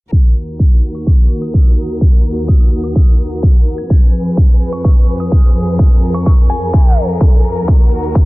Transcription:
0.12 D#2 D#3 F#4 A#4, kick, closed hi-hat
0.24 closed hi-hat
0.36 closed hi-hat
0.59 kick, closed hi-hat
0.71 closed hi-hat
0.83 closed hi-hat
0.95 C#6
1.06 C#6, kick, closed hi-hat
1.18 closed hi-hat
1.42 D#6
1.54 kick, closed hi-hat
1.66 closed hi-hat
1.77 closed hi-hat
2.01 kick, closed hi-hat
2.25 closed hi-hat
2.36 closed hi-hat
2.48 D#6, kick, closed hi-hat
2.60 D#6, closed hi-hat
2.72 closed hi-hat
2.84 D#6, closed hi-hat
2.96 kick, closed hi-hat
3.07 closed hi-hat
3.19 closed hi-hat
3.31 closed hi-hat
3.43 kick, closed hi-hat
3.66 closed hi-hat
3.78 G#6, closed hi-hat
3.90 F2 F3 G#4 B4, kick, closed hi-hat
4.02 closed hi-hat
4.14 closed hi-hat
4.25 closed hi-hat
4.37 kick, closed hi-hat
4.49 closed hi-hat
4.61 closed hi-hat
4.73 C#6, closed hi-hat
4.84 C#6, kick, closed hi-hat
4.96 closed hi-hat
5.08 closed hi-hat
5.20 D#6, closed hi-hat
5.32 kick, closed hi-hat
5.44 closed hi-hat
5.55 closed hi-hat
5.67 closed hi-hat
5.79 A#4, kick, closed hi-hat
5.91 closed hi-hat
6.03 closed hi-hat
6.14 C#6, closed hi-hat
6.26 C#6, kick, closed hi-hat
6.38 closed hi-hat
6.50 G#5, closed hi-hat
6.62 closed hi-hat
6.73 kick, closed hi-hat
6.85 closed hi-hat
6.97 closed hi-hat
7.09 closed hi-hat
7.21 kick, closed hi-hat
7.33 closed hi-hat
7.44 closed hi-hat
7.56 closed hi-hat
7.68 D#2 D#3 F#4, kick, closed hi-hat
7.80 closed hi-hat
7.92 closed hi-hat
8.03 closed hi-hat
8.15 kick, closed hi-hat

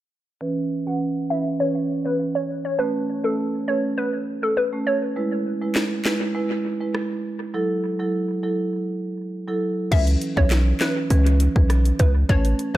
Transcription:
0.41 E3 C#4 B4
0.86 E3 C#4 B4 F#5
1.30 E3 C#4 B4 E5
1.60 E3 C#4 B4 C#5
2.05 E3 C#4 B4
2.35 C#5
2.65 C#5
2.79 A3 C#4 B4
3.24 A3 C#4 A4 B4
3.68 A3 C#4 B4 C#5
3.98 B4
4.43 A4
4.57 B4
4.73 A3 C#4 B4
4.87 C#5
5.16 G#3 E4 B4
5.62 G#3 E4 B4
5.75 snare, clap
6.05 G#3 E4 B4, snare, clap
6.35 G#3 E4 B4
6.80 G#3 E4 B4
6.95 cross-stick
7.54 F#3 E4 A4
7.99 F#3 E4 A4
8.43 F#3 E4 A4
9.48 F#3 E4 A4
9.91 C#2 E3 C#4 B4 E5, kick, closed hi-hat, crash
10.07 closed hi-hat
10.22 closed hi-hat
10.37 B1 E3 C#4 B4 C#5, kick
10.50 snare, clap, closed hi-hat
10.80 E3 C#4 B4, snare, clap, closed hi-hat
11.10 C#2 E3 C#4 B4, closed hi-hat
11.27 closed hi-hat
11.40 closed hi-hat
11.56 B1 E3 C#4 B4, kick
11.70 cross-stick, closed hi-hat
11.85 closed hi-hat
11.99 C#2 B4, kick, closed hi-hat
12.29 A1 A3 C#4 B4 C#5, kick, closed hi-hat
12.45 closed hi-hat
12.59 closed hi-hat

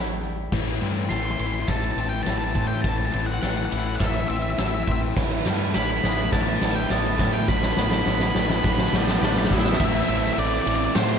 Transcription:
Already playing: A1 C4 E4 G4
0.23 G3, closed hi-hat
0.52 A1 A2 E3, kick, snare, crash
0.61 A2 E3
0.68 A2 E3
0.76 A2 E3
0.81 G2 A2 E3 C4, ride
0.91 A2 E3
0.98 A2 E3
1.06 A1 A2 E3 A4 C6, snare, ride
1.13 A2 E3 C6
1.22 A2 E3 C6
1.29 A2 E3 C6
1.37 A1 A2 E3 E4 C6, ride
1.45 A2 E3 C6
1.51 A2 E3 C6
1.60 A2 E3 C6
1.68 A1 A2 E3 A4 A5, kick, snare, ride
1.75 A2 E3 A5
1.82 A2 E3 A5
1.91 A2 E3 A5
1.97 A1 A2 E3 C4 A5, ride
2.07 A2 E3 G5
2.13 A2 E3
2.21 A2 E3 A5
2.26 A1 A2 E3 E4 A5, snare, ride
2.37 A2 E3 A5
2.44 A2 E3 A5
2.51 A2 E3 A5
2.55 A2 C4 A5, kick, ride
2.60 E3
2.68 A2 E3 G5
2.75 A2 E3
2.82 A1 A2 E3 A5, kick, snare, ride
2.89 A2 E3 A5
2.97 A2 E3 A5
3.05 A2 E3 A5
3.13 A1 A2 E3 C4 A5, ride
3.20 A2 E3 A5
3.26 F#5
3.30 A2 E3 F#5
3.38 A2 E3
3.42 A1 A2 A4 F#5, snare, ride
3.47 E3 F#5
3.54 A2 E3 F#5
3.61 A2 E3 F#5
3.69 A1 A2 E3 E4 F#5, ride
3.77 A2 E3 F#5
3.84 A2 E3 F#5
3.92 A2 E3 F#5
4.00 A1 A2 E3 A4 E5, kick, snare, ride
4.06 A2 E3 E5
4.14 A2 E3 E5
4.20 A2 E3 E5
4.28 A1 A2 E3 C4 E5, ride
4.37 A2 E3 E5
4.42 A2 E5
4.48 E3 E5
4.54 A2 E3
4.58 A1 A2 E4 E5, snare, ride
4.63 E3
4.68 A2 E3 E5
4.74 A2 E3 E5
4.83 A2 E3 E5
4.88 A1 C4, kick, ride
4.92 A2 E3 E5
5.01 A2 E3
5.08 A2 E3
5.16 A1 A2 D3 E4 B4, kick, snare, crash
5.25 A2 D3 E4 B4
5.31 A2 D3 E4 B4
5.40 A2 D3 E4 B4
5.45 G2 A2 D3 G3 E4 B4, snare, ride
5.54 A2 D3 E4 B4
5.62 A2 D3 E4 B4
5.70 A2 D3 E4 B4
5.74 A1 A2 E4 B5, snare, ride
5.79 D3 E4 B4 B5
5.85 A2 D3 E4 B4
5.90 A2 B4 B5
5.94 D3 E4 B5
6.02 A1 A2 D3 B3 E4 B4 B5, snare, ride
6.09 A2 D3 E4 B4
6.13 A2 E4 B4 B5
6.18 D3 B5
6.24 A2 D3 E4 B4
6.32 A1 A2 D3 E4 B4 A5, kick, snare, ride
6.40 A2 D3 E4 B4 A5
6.48 A2 D3 E4 B4 A5
6.55 A2 D3 E4 B4 A5
6.61 A1 A2 D3 G3 E4 B4, snare, ride
6.66 A5
6.70 A2 D3 E4 B4
6.75 A2 D3 E4 B4 G5
6.86 A1 A2 D3 E4 B4, snare, ride
6.91 A2 D3 B3 E4 B4 A5
6.98 A2 D3 E4 B4 A5
7.07 A2 D3 E4 B4 A5
7.13 A2 D3 E4 B4 A5
7.19 A2 G3 A5, kick, snare, ride
7.24 A2 D3 E4 B4 A5
7.31 A2 D3 E4 B4 G5
7.40 A2 D3 E4 B4
7.48 A1 A2 D3 F#4 B4 B5, kick, snare
7.56 A2 D3 F#4 B4 B5
7.63 A2 D3 F#4 B4 B5, snare
7.72 A2 D3 F#4 B4 B5
7.77 A1 A2 D3 B3 F#4 B4, snare
7.81 B5
7.85 A2 D3 F#4 B4
7.91 A2 B5, snare
7.95 D3 F#4 B4 B5
8.01 A2 D3 F#4 B4
8.06 A1 B5, snare
8.10 A2 D3 F#4 B4
8.15 A2 D3 F#4 B4 B5
8.20 B5, snare
8.25 A2 D3 F#4 B4
8.31 A2 D3 F#4 B5
8.35 A1 D4 B4, snare
8.39 A2 D3 F#4 B4 B5
8.46 A2 D3 F#4 B4 B5, snare
8.56 A2 D3 F#4 B4 B5
8.64 A1 A2 D3 F#4 B4 B5, kick, snare
8.71 A2 D3 F#4 B4 B5
8.78 A2 D3 F#4 B4 B5, snare
8.86 A2 D3 F#4 B4 B5
8.93 A1 A2 D3 B3 F#4 B4 G5, snare
8.97 B5
9.02 A2 D3 F#4 B4 G5 B5
9.08 A2 D3 F#4 B4 G5 B5, snare
9.17 A2 D3 F#4 B4 G5
9.21 A1 A2 D4 G5 B5, snare
9.25 D3 F#4 B4
9.31 A2 D3 F#4 B4 G5 B5
9.36 A2 G5 B5, snare
9.41 D3 F#4 B4, snare
9.46 A2 D3 F#4 B4 G5 B5
9.51 A1 B3 E5 B5, kick, snare
9.55 A2 D3 F#4 B4, snare
9.60 A2 E5
9.64 D3 F#4 B4, snare
9.69 A2 D3 F#4 B4 E5, snare
9.77 A1 A2 E3 A3 C4 E4 E5, kick, crash
9.81 E4 E5
9.93 E5
10.00 E5
10.07 A1 A2 E3 A3 C4 E4 E5, ride
10.17 E5
10.24 E5, snare
10.33 A2 E3 A3 E5
10.37 A1 E3 A3 C4 E4 D5, ride
10.47 D5
10.54 D5
10.62 A2 D5
10.66 A1 E3 A3 C4 E4 D5, ride
10.76 D5
10.85 D5
10.94 A2 E3 A3 C4 E4 C5, snare, ride
11.04 C5
11.10 C5

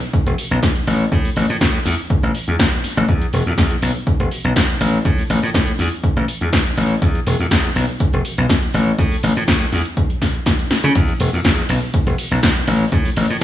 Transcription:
0.13 muted slap bass stroke, kick, closed hi-hat
0.26 E1, closed hi-hat
0.38 open hi-hat
0.51 B1, closed hi-hat
0.63 kick, snare, closed hi-hat
0.76 closed hi-hat
0.87 A1, open hi-hat
1.12 A2, kick, closed hi-hat
1.25 open hi-hat
1.36 A1, open hi-hat
1.49 A2
1.61 A2, kick, snare, closed hi-hat
1.74 closed hi-hat
1.85 E2, open hi-hat
2.10 kick, closed hi-hat
2.23 A1, closed hi-hat
2.35 open hi-hat
2.48 E2, closed hi-hat
2.59 kick, snare, closed hi-hat
2.72 closed hi-hat
2.84 muted slap bass stroke, open hi-hat
2.97 A1
3.09 E2, kick, closed hi-hat
3.22 closed hi-hat
3.33 E1, open hi-hat
3.46 E2
3.58 E2, kick, snare, closed hi-hat
3.71 closed hi-hat
3.82 B1, open hi-hat
4.07 muted slap bass stroke, kick, closed hi-hat
4.20 E1, closed hi-hat
4.31 open hi-hat
4.44 B1, closed hi-hat
4.56 kick, snare, closed hi-hat
4.69 closed hi-hat
4.81 A1, open hi-hat
5.05 A2, kick, closed hi-hat
5.18 open hi-hat
5.30 A1, open hi-hat
5.43 A2
5.54 A2, kick, snare, closed hi-hat
5.67 closed hi-hat
5.79 E2, open hi-hat
6.04 kick, closed hi-hat
6.17 A1, closed hi-hat
6.28 open hi-hat
6.41 E2, closed hi-hat
6.53 kick, snare, closed hi-hat
6.66 closed hi-hat
6.77 A1, open hi-hat
7.02 E2, kick, closed hi-hat
7.15 closed hi-hat
7.27 E1, open hi-hat
7.39 E2
7.51 E2, kick, snare, closed hi-hat
7.64 closed hi-hat
7.76 B1, open hi-hat
8.00 muted slap bass stroke, kick, closed hi-hat
8.13 E1, closed hi-hat
8.25 open hi-hat
8.38 B1, closed hi-hat
8.49 kick, snare, closed hi-hat
8.63 closed hi-hat
8.74 A1, open hi-hat
8.99 A2, kick, closed hi-hat
9.12 open hi-hat
9.23 A1, open hi-hat
9.36 A2
9.48 A2, kick, snare, closed hi-hat
9.61 closed hi-hat
9.72 E2, open hi-hat
9.85 closed hi-hat
9.97 kick, closed hi-hat
10.10 closed hi-hat
10.22 kick, snare, open hi-hat
10.35 closed hi-hat
10.46 kick, snare, closed hi-hat
10.59 closed hi-hat
10.71 muted slap bass stroke, snare, open hi-hat
10.84 C#3, closed hi-hat
10.95 E2, kick, closed hi-hat, ride
11.08 closed hi-hat
11.20 E1, open hi-hat, ride
11.33 E2
11.45 E2, kick, snare, closed hi-hat, ride
11.58 closed hi-hat
11.69 B1, open hi-hat, ride
11.94 muted slap bass stroke, kick, closed hi-hat, ride
12.07 E1, closed hi-hat
12.18 open hi-hat, ride
12.31 B1, closed hi-hat
12.43 kick, snare, closed hi-hat, ride
12.56 closed hi-hat
12.67 A1, open hi-hat, ride
12.92 A2, kick, closed hi-hat, ride
13.05 open hi-hat
13.16 A1, open hi-hat, ride
13.30 A2

